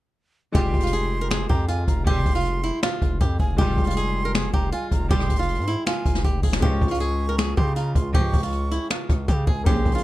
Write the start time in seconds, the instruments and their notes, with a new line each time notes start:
0.52 808-style bass F1, string section C2 G#2 G3, felt piano G#3 F4, nylon-string guitar G4, flute C6, kick, closed hi-hat
0.57 felt piano G4
0.74 808-style bass F1, kick, closed hi-hat
0.80 nylon-string guitar F4, closed hi-hat
0.87 closed hi-hat
0.93 nylon-string guitar G#4, closed hi-hat
1.21 nylon-string guitar A#4
1.31 nylon-string guitar G#4, finger snap, snare
1.49 808-style bass F2, nylon-string guitar G4, flute A#5, kick
1.68 nylon-string guitar F4, flute G#5, closed hi-hat
1.88 808-style bass F1, flute A#5, kick, closed hi-hat
2.07 808-style bass F1, string section C2 G#2 G3, nylon-string guitar G4, flute C6, kick, closed hi-hat
2.26 808-style bass F1, kick, closed hi-hat
2.30 closed hi-hat
2.35 nylon-string guitar F4, closed hi-hat
2.40 closed hi-hat
2.45 closed hi-hat
2.64 nylon-string guitar E4, closed hi-hat
2.83 nylon-string guitar F4, finger snap, snare
3.02 808-style bass F1, kick, closed hi-hat
3.21 808-style bass F2, nylon-string guitar G4, kick, closed hi-hat
3.40 808-style bass F1, nylon-string guitar G#4, flute G#5, kick
3.57 808-style bass F1, string section C2 G#2 G3, felt piano G#3 F4, nylon-string guitar G4, flute C6, kick, closed hi-hat
3.61 felt piano G3
3.78 808-style bass F1, kick, closed hi-hat
3.84 nylon-string guitar F4, closed hi-hat
3.90 closed hi-hat
3.97 nylon-string guitar G#4, closed hi-hat
4.25 nylon-string guitar A#4
4.35 nylon-string guitar G#4, finger snap, snare
4.54 808-style bass F1, nylon-string guitar G4, flute A#5, kick
4.72 nylon-string guitar F4, flute G#5, closed hi-hat
4.92 808-style bass F1, flute A#5, kick, closed hi-hat
5.10 808-style bass F1, string section C2 G#2 G3, nylon-string guitar G4, flute C6, kick, closed hi-hat
5.20 cross-stick
5.30 808-style bass F1, kick, closed hi-hat
5.36 nylon-string guitar F4, closed hi-hat
5.42 closed hi-hat
5.49 closed hi-hat
5.55 808-style bass G#2, closed hi-hat
5.61 closed hi-hat
5.67 nylon-string guitar E4, closed hi-hat
5.86 nylon-string guitar F4, flute G#5, finger snap, snare
6.05 808-style bass F1, kick, closed hi-hat
6.15 snare
6.24 808-style bass F1, nylon-string guitar G4, kick, closed hi-hat
6.43 808-style bass F1, nylon-string guitar G#4, kick, open hi-hat
6.53 finger snap, snare
6.60 string section C#2 G#2 F3, 808-style bass C#2, felt piano G#3 C#4, nylon-string guitar G4, flute C#6, kick, closed hi-hat
6.64 felt piano F4
6.81 808-style bass C#2, kick, closed hi-hat
6.88 nylon-string guitar F4, closed hi-hat
6.94 closed hi-hat
7.00 nylon-string guitar G#4, closed hi-hat
7.29 nylon-string guitar A#4
7.38 nylon-string guitar G#4, finger snap, snare
7.57 808-style bass C#3, nylon-string guitar G4, flute C6, kick
7.76 nylon-string guitar F4, flute A#5, closed hi-hat
7.95 808-style bass C#2, flute C6, kick, closed hi-hat
8.14 808-style bass C#2, string section C#2 G#2 F3, nylon-string guitar G4, flute C#6, kick, closed hi-hat
8.33 808-style bass C#2, kick, closed hi-hat
8.38 closed hi-hat
8.43 nylon-string guitar F4, closed hi-hat
8.48 closed hi-hat
8.52 closed hi-hat
8.71 nylon-string guitar E4, closed hi-hat
8.90 nylon-string guitar F4, finger snap, snare
9.09 808-style bass C#2, kick, cross-stick, closed hi-hat
9.28 808-style bass C#3, nylon-string guitar G4, kick, closed hi-hat
9.47 808-style bass C#2, nylon-string guitar G#4, flute G#5, kick
9.64 808-style bass A#1, string section C#2 A#2 F3, felt piano A#3 C#4, nylon-string guitar G4, flute C6, kick, closed hi-hat
9.68 felt piano G#4
9.85 808-style bass A#1, kick, closed hi-hat
9.92 nylon-string guitar F4, closed hi-hat
9.98 closed hi-hat